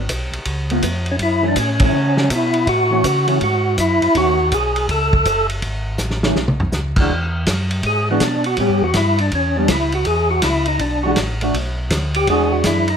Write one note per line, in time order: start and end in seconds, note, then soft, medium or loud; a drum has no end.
0.09 0.31 B1 medium
0.09 kick soft
0.09 hi-hat pedal medium
0.09 ride medium
0.32 0.39 B1 soft
0.32 ride soft
0.45 0.82 C#2 medium
0.45 kick soft
0.45 ride medium
0.70 0.82 A3 medium
0.70 0.82 B3 medium
0.70 0.83 F4 medium
0.70 ride soft
0.82 1.19 F2 medium
0.82 kick soft
0.82 hi-hat pedal medium
0.82 ride medium
1.06 ride soft
1.11 1.16 C#4 medium
1.19 1.55 F#2 medium
1.19 1.46 E4 medium
1.19 kick soft
1.19 ride medium
1.42 1.55 E3 medium
1.42 1.55 A3 medium
1.42 1.55 C#4 medium
1.48 1.58 D4 medium
1.56 1.92 A2 medium
1.56 kick soft
1.56 hi-hat pedal medium
1.56 ride medium
1.60 1.83 C#4 medium
1.80 1.94 E3 medium
1.80 1.94 A3 medium
1.80 1.94 C#4 medium
1.80 kick medium
1.80 ride medium
1.86 2.30 C#4 medium
1.93 2.29 C#3 medium
2.17 snare medium
2.30 2.67 B2 medium
2.30 kick soft
2.30 hi-hat pedal medium
2.30 ride medium
2.35 2.68 E4 medium
2.53 ride soft
2.67 3.03 A2 medium
2.67 3.38 F#4 loud
2.67 kick soft
2.67 ride medium
2.90 3.03 E3 medium
2.90 3.04 A3 medium
2.90 3.04 C#4 medium
3.04 3.40 C#3 medium
3.04 kick soft
3.04 hi-hat pedal medium
3.04 ride medium
3.27 3.40 E3 medium
3.27 3.40 A3 medium
3.27 3.40 C#4 medium
3.27 ride soft
3.41 3.77 G#2 medium
3.41 3.77 F#4 loud
3.41 kick soft
3.41 ride medium
3.78 4.01 F#2 medium
3.78 4.17 E4 medium
3.78 kick soft
3.78 hi-hat pedal medium
3.78 ride medium
4.02 4.09 F#2 soft
4.02 ride soft
4.15 4.51 D#2 medium
4.15 4.37 D#3 medium
4.15 4.37 A3 medium
4.15 4.37 C#4 medium
4.15 4.54 F#4 loud
4.15 kick soft
4.15 ride medium
4.52 4.88 B1 medium
4.52 4.88 G#4 medium
4.52 kick soft
4.52 hi-hat pedal soft
4.52 ride medium
4.76 ride medium
4.89 5.25 C#2 medium
4.89 5.47 A4 loud
4.89 kick soft
4.89 ride medium
5.13 kick medium
5.25 5.62 F#1 medium
5.25 kick soft
5.25 hi-hat pedal medium
5.25 ride medium
5.49 ride soft
5.62 5.99 G#1 medium
5.62 kick soft
5.62 ride medium
5.98 6.35 A1 medium
5.98 snare soft
5.98 hi-hat pedal medium
6.11 snare soft
6.23 6.36 D#3 medium
6.23 6.37 A3 medium
6.23 6.37 C#4 medium
6.23 snare medium
6.36 6.72 B1 medium
6.36 snare medium
6.48 mid tom medium
6.60 floor tom medium
6.72 7.09 C#2 medium
6.72 snare medium
6.72 hi-hat pedal medium
6.96 7.10 E3 medium
6.96 kick medium
6.96 crash medium
7.00 7.11 G#3 medium
7.00 7.11 D4 medium
7.00 7.11 F#4 medium
7.10 7.46 E2 medium
7.10 kick soft
7.46 7.83 F#2 medium
7.46 kick soft
7.46 snare medium
7.46 hi-hat pedal medium
7.46 ride medium
7.71 ride medium
7.83 8.20 G#2 medium
7.83 8.09 G#4 medium
7.83 kick soft
7.83 ride medium
8.10 8.21 E3 medium
8.10 8.22 G#3 medium
8.10 8.22 B3 medium
8.10 8.22 D4 medium
8.10 8.22 F#4 medium
8.20 8.57 B2 medium
8.20 8.46 D4 medium
8.20 kick soft
8.20 snare medium
8.20 hi-hat pedal medium
8.20 ride medium
8.44 8.59 F#4 medium
8.44 ride soft
8.57 8.70 A2 medium
8.57 8.81 G3 medium
8.57 8.81 B3 medium
8.57 8.81 C#4 medium
8.57 8.83 G4 medium
8.57 kick soft
8.57 ride medium
8.69 8.83 G2 soft
8.82 8.94 E2 medium
8.82 8.96 F#4 medium
8.94 9.31 G2 medium
8.94 9.19 E4 medium
8.94 kick soft
8.94 snare medium
8.94 hi-hat pedal medium
8.94 ride medium
9.18 9.33 D4 medium
9.18 ride soft
9.31 9.68 E2 medium
9.31 9.57 C#4 medium
9.31 kick soft
9.31 ride medium
9.56 9.69 G3 medium
9.56 9.69 B3 medium
9.56 9.69 C#4 medium
9.56 9.69 D4 medium
9.68 10.05 C#2 medium
9.68 9.94 E4 medium
9.68 kick soft
9.68 snare medium
9.68 hi-hat pedal medium
9.68 ride medium
9.92 10.07 F#4 medium
9.92 ride soft
10.05 10.42 E2 medium
10.05 10.30 G#4 medium
10.05 kick soft
10.05 ride medium
10.31 10.43 F#4 medium
10.42 10.79 C#2 medium
10.42 10.67 E4 medium
10.42 kick soft
10.42 snare medium
10.42 hi-hat pedal medium
10.42 ride medium
10.65 10.80 D#4 medium
10.65 ride soft
10.79 11.16 B1 medium
10.79 11.04 D4 medium
10.79 kick soft
10.79 ride medium
11.03 11.17 E3 medium
11.03 11.17 G#3 medium
11.03 11.17 D4 medium
11.03 11.11 F#4 medium
11.03 11.17 F#4 medium
11.16 11.53 A1 medium
11.16 kick soft
11.16 snare medium
11.16 hi-hat pedal medium
11.16 ride medium
11.41 11.53 A3 medium
11.41 11.54 D4 medium
11.41 11.54 F#4 medium
11.41 ride soft
11.54 11.90 B1 medium
11.54 kick soft
11.54 ride medium
11.90 12.27 D2 medium
11.90 kick soft
11.90 snare medium
11.90 hi-hat pedal medium
11.90 ride medium
12.14 12.28 G4 medium
12.14 ride medium
12.27 12.64 E2 medium
12.27 12.85 E3 medium
12.27 12.85 G#3 medium
12.27 12.85 D4 medium
12.27 12.86 F#4 medium
12.27 12.52 G#4 loud
12.27 kick soft
12.27 ride medium
12.52 12.65 F#4 medium
12.64 12.97 F#2 medium
12.64 12.89 E4 medium
12.64 kick soft
12.64 snare medium
12.64 hi-hat pedal medium
12.64 ride medium
12.88 12.97 D#4 medium
12.88 ride soft